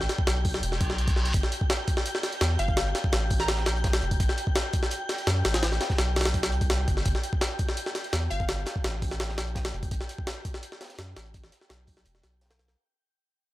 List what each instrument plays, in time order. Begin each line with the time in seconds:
Already playing: synth texture G5 G6
0.01 snare
0.09 snare, open hi-hat
0.19 kick
0.27 sub bass B1, snare, open hi-hat
0.45 kick, open hi-hat
0.54 snare
0.63 sub bass E1, open hi-hat, reverse cymbal
0.72 snare
0.81 sub bass B1, kick, open hi-hat
0.90 snare
0.98 open hi-hat
1.08 kick, open hi-hat
1.16 snare
1.25 open hi-hat
1.34 sub bass G1, synth texture G5 G6, kick, closed hi-hat, open hi-hat
1.43 snare, closed hi-hat
1.52 closed hi-hat, open hi-hat
1.61 kick
1.70 snare, closed hi-hat, open hi-hat
1.87 kick, closed hi-hat, open hi-hat
1.97 snare
2.06 closed hi-hat, open hi-hat
2.15 snare
2.23 snare, open hi-hat
2.33 closed hi-hat
2.41 sub bass E2, snare, closed hi-hat, open hi-hat
2.59 sub bass G1, synth pluck F5, closed hi-hat, open hi-hat
2.68 kick, closed hi-hat
2.77 snare, closed hi-hat, open hi-hat
2.86 closed hi-hat
2.95 snare, closed hi-hat, open hi-hat
3.04 kick
3.12 sub bass A1, snare, closed hi-hat, open hi-hat
3.30 kick, closed hi-hat, open hi-hat
3.40 synth pluck A#5, snare, closed hi-hat
3.48 snare, closed hi-hat, open hi-hat
3.57 snare, closed hi-hat
3.66 sub bass A#1, snare, closed hi-hat, open hi-hat
3.77 closed hi-hat
3.84 kick, snare, closed hi-hat, open hi-hat
3.93 snare, open hi-hat
4.02 sub bass F1, closed hi-hat
4.11 kick, open hi-hat
4.20 sub bass A1, kick, closed hi-hat, open hi-hat
4.29 snare, closed hi-hat
4.37 closed hi-hat, open hi-hat
4.47 kick
4.55 snare, closed hi-hat, open hi-hat
4.73 kick, closed hi-hat, open hi-hat
4.83 snare
4.91 closed hi-hat, open hi-hat
5.09 snare, open hi-hat
5.18 closed hi-hat
5.27 sub bass F#2, snare, closed hi-hat, open hi-hat
5.45 sub bass A1, snare, closed hi-hat, open hi-hat
5.54 snare, closed hi-hat, open hi-hat
5.63 snare, closed hi-hat, open hi-hat
5.71 snare, closed hi-hat
5.81 snare, closed hi-hat, open hi-hat
5.90 kick, snare, closed hi-hat
5.98 sub bass B1, snare, closed hi-hat, open hi-hat
6.16 snare, closed hi-hat, open hi-hat
6.21 snare, open hi-hat
6.25 snare, closed hi-hat, open hi-hat
6.34 kick, closed hi-hat, open hi-hat
6.43 snare, open hi-hat
6.52 sub bass C2, closed hi-hat
6.61 kick, closed hi-hat, open hi-hat
6.70 snare, closed hi-hat, open hi-hat
6.88 sub bass G1, kick, closed hi-hat, open hi-hat
6.97 snare
7.05 sub bass G1, kick, closed hi-hat, open hi-hat
7.15 snare, closed hi-hat
7.23 closed hi-hat, open hi-hat
7.33 kick
7.41 snare, closed hi-hat, open hi-hat
7.59 kick, closed hi-hat, open hi-hat
7.69 snare
7.77 closed hi-hat, open hi-hat
7.86 snare
7.95 snare, open hi-hat
8.04 closed hi-hat
8.13 sub bass E2, snare, closed hi-hat, open hi-hat
8.31 sub bass G1, synth pluck F5, closed hi-hat, open hi-hat
8.40 kick, closed hi-hat
8.48 snare, closed hi-hat, open hi-hat
8.58 closed hi-hat
8.66 snare, closed hi-hat, open hi-hat
8.76 kick
8.84 sub bass A1, snare, closed hi-hat, open hi-hat
9.02 kick, closed hi-hat, open hi-hat
9.11 snare, closed hi-hat
9.20 snare, closed hi-hat, open hi-hat
9.29 snare, closed hi-hat
9.38 sub bass A#1, snare, closed hi-hat, open hi-hat
9.48 closed hi-hat
9.55 kick, snare, closed hi-hat, open hi-hat
9.65 snare, open hi-hat
9.74 sub bass F1, closed hi-hat
9.83 kick, open hi-hat
9.91 sub bass A1, kick, closed hi-hat, open hi-hat
10.01 snare, closed hi-hat
10.09 closed hi-hat, open hi-hat
10.18 kick
10.27 snare, closed hi-hat, open hi-hat
10.45 kick, closed hi-hat, open hi-hat
10.54 snare
10.63 closed hi-hat, open hi-hat
10.72 snare
10.81 snare, closed hi-hat, open hi-hat
10.85 snare, closed hi-hat
10.89 snare, closed hi-hat
10.94 snare, closed hi-hat
10.98 sub bass F#2, snare, closed hi-hat, open hi-hat
11.16 sub bass A1, snare, closed hi-hat, open hi-hat
11.25 closed hi-hat
11.34 kick, closed hi-hat, open hi-hat
11.44 snare, closed hi-hat
11.52 snare, closed hi-hat, open hi-hat
11.61 snare
11.69 sub bass B1, snare, closed hi-hat, open hi-hat
11.87 kick, closed hi-hat, open hi-hat
11.97 snare, closed hi-hat
12.05 sub bass E1, closed hi-hat, open hi-hat
12.15 snare
12.23 sub bass B1, snare, open hi-hat
12.41 snare, closed hi-hat, open hi-hat
12.46 snare, closed hi-hat
12.50 snare, closed hi-hat
12.59 snare, closed hi-hat, open hi-hat
12.68 snare, closed hi-hat